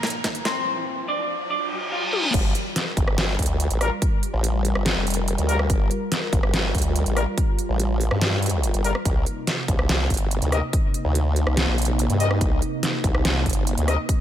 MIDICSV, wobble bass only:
0, 0, Header, 1, 2, 480
1, 0, Start_track
1, 0, Key_signature, -2, "minor"
1, 0, Tempo, 419580
1, 757, Time_signature, 4, 2, 24, 8
1, 16252, End_track
2, 0, Start_track
2, 0, Title_t, "Wobble bass"
2, 0, Program_c, 0, 39
2, 2678, Note_on_c, 0, 31, 100
2, 2899, Note_off_c, 0, 31, 0
2, 3398, Note_on_c, 0, 31, 93
2, 3859, Note_off_c, 0, 31, 0
2, 3878, Note_on_c, 0, 38, 99
2, 4219, Note_off_c, 0, 38, 0
2, 4239, Note_on_c, 0, 33, 104
2, 4460, Note_off_c, 0, 33, 0
2, 4959, Note_on_c, 0, 33, 106
2, 5420, Note_off_c, 0, 33, 0
2, 5439, Note_on_c, 0, 31, 95
2, 5660, Note_off_c, 0, 31, 0
2, 5679, Note_on_c, 0, 29, 94
2, 6140, Note_off_c, 0, 29, 0
2, 6159, Note_on_c, 0, 38, 98
2, 6499, Note_off_c, 0, 38, 0
2, 6518, Note_on_c, 0, 31, 98
2, 6739, Note_off_c, 0, 31, 0
2, 7238, Note_on_c, 0, 31, 91
2, 7699, Note_off_c, 0, 31, 0
2, 7718, Note_on_c, 0, 38, 103
2, 8060, Note_off_c, 0, 38, 0
2, 8079, Note_on_c, 0, 33, 104
2, 8300, Note_off_c, 0, 33, 0
2, 8799, Note_on_c, 0, 33, 100
2, 9260, Note_off_c, 0, 33, 0
2, 9279, Note_on_c, 0, 43, 92
2, 9980, Note_off_c, 0, 43, 0
2, 10000, Note_on_c, 0, 31, 103
2, 10220, Note_off_c, 0, 31, 0
2, 10358, Note_on_c, 0, 36, 100
2, 10579, Note_off_c, 0, 36, 0
2, 11078, Note_on_c, 0, 36, 94
2, 11539, Note_off_c, 0, 36, 0
2, 11558, Note_on_c, 0, 31, 101
2, 11900, Note_off_c, 0, 31, 0
2, 11919, Note_on_c, 0, 38, 102
2, 12140, Note_off_c, 0, 38, 0
2, 12639, Note_on_c, 0, 38, 104
2, 13100, Note_off_c, 0, 38, 0
2, 13119, Note_on_c, 0, 36, 96
2, 13340, Note_off_c, 0, 36, 0
2, 13359, Note_on_c, 0, 34, 96
2, 13820, Note_off_c, 0, 34, 0
2, 13839, Note_on_c, 0, 43, 100
2, 14179, Note_off_c, 0, 43, 0
2, 14198, Note_on_c, 0, 36, 102
2, 14419, Note_off_c, 0, 36, 0
2, 14918, Note_on_c, 0, 36, 98
2, 15379, Note_off_c, 0, 36, 0
2, 15398, Note_on_c, 0, 31, 103
2, 15740, Note_off_c, 0, 31, 0
2, 15759, Note_on_c, 0, 38, 97
2, 15980, Note_off_c, 0, 38, 0
2, 16252, End_track
0, 0, End_of_file